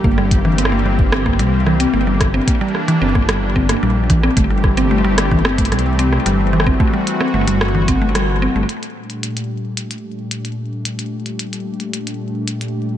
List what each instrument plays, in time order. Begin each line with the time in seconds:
Already playing: analog synth pad G3 G4
0.04 detuned saw bass G1, analog synth pad E3 A#3 C4, synth arpeggio sound A#3, kick
0.18 synth arpeggio sound G3, cross-stick
0.31 kick, closed hi-hat
0.45 synth arpeggio sound E3
0.58 synth arpeggio sound C4, closed hi-hat
0.65 cross-stick
0.72 synth arpeggio sound A#3
0.85 synth arpeggio sound G3
0.99 kick
1.12 synth arpeggio sound C4, cross-stick
1.26 synth arpeggio sound A#3, kick, cross-stick
1.39 detuned saw bass C2, synth arpeggio sound G3, closed hi-hat
1.66 synth arpeggio sound E3, cross-stick
1.80 synth arpeggio sound C4, closed hi-hat
1.94 detuned saw bass G1, synth arpeggio sound A#3
2.07 synth arpeggio sound G3
2.21 analog synth pad D4, kick, cross-stick, closed hi-hat
2.34 synth arpeggio sound C4
2.48 synth arpeggio sound A#3, kick, closed hi-hat
2.61 synth arpeggio sound G3
2.75 cross-stick
2.88 synth arpeggio sound E3, closed hi-hat
3.02 detuned saw bass G1, synth arpeggio sound C4
3.15 synth arpeggio sound A#3, kick, cross-stick
3.29 synth arpeggio sound G3, cross-stick, closed hi-hat
3.56 synth arpeggio sound C4, kick
3.69 synth arpeggio sound A#3, cross-stick, closed hi-hat
3.83 detuned saw bass A#1, synth arpeggio sound G3
4.10 synth arpeggio sound E3, kick, closed hi-hat
4.23 synth arpeggio sound C4, cross-stick
4.37 detuned saw bass G1, analog synth pad E3 G3 A3 C4 G4, synth arpeggio sound A3, kick, closed hi-hat
4.50 synth arpeggio sound G3
4.64 kick, cross-stick
4.77 synth arpeggio sound C4, closed hi-hat
4.91 synth arpeggio sound A3
5.05 synth arpeggio sound G3
5.18 cross-stick, closed hi-hat
5.31 synth arpeggio sound E3, kick
5.45 synth arpeggio sound C4, cross-stick
5.58 synth arpeggio sound A3, kick, closed hi-hat
5.65 closed hi-hat
5.72 detuned saw bass C2, synth arpeggio sound G3, cross-stick, closed hi-hat
5.79 closed hi-hat
5.99 synth arpeggio sound C4, closed hi-hat
6.13 synth arpeggio sound A3, cross-stick
6.26 detuned saw bass G1, synth arpeggio sound G3, closed hi-hat
6.53 synth arpeggio sound E3, analog synth pad F#4
6.60 cross-stick
6.66 synth arpeggio sound C4, kick
6.80 synth arpeggio sound A3, kick
6.94 synth arpeggio sound G3
7.07 closed hi-hat
7.21 synth arpeggio sound C4, cross-stick
7.34 detuned saw bass G1, synth arpeggio sound A3
7.48 synth arpeggio sound G3, closed hi-hat
7.61 cross-stick
7.75 synth arpeggio sound E3
7.88 detuned saw bass G1, synth arpeggio sound C4, kick, closed hi-hat
8.02 synth arpeggio sound A3
8.15 synth arpeggio sound G3, cross-stick, closed hi-hat
8.42 synth arpeggio sound C4
8.56 detuned saw bass G1, synth arpeggio sound A3
8.69 analog synth pad A#2 G3 A3 D4 G4, closed hi-hat
8.83 closed hi-hat
9.10 closed hi-hat
9.23 closed hi-hat
9.37 closed hi-hat
9.77 closed hi-hat
9.91 closed hi-hat
10.31 closed hi-hat
10.45 closed hi-hat
10.85 closed hi-hat
10.99 closed hi-hat
11.26 closed hi-hat
11.39 closed hi-hat
11.53 closed hi-hat
11.80 closed hi-hat
11.94 closed hi-hat
12.07 closed hi-hat
12.48 closed hi-hat
12.61 closed hi-hat